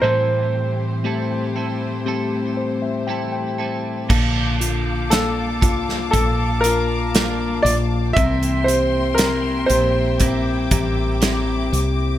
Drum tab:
CC |----------------|x---------------|----------------|
HH |----------------|--x-x-x-x-x-x-x-|xxx-x-x-x-x-x-x-|
SD |----------------|----o--o----o---|----o-------o---|
BD |----------------|o-----o-o-------|o-------o-o-----|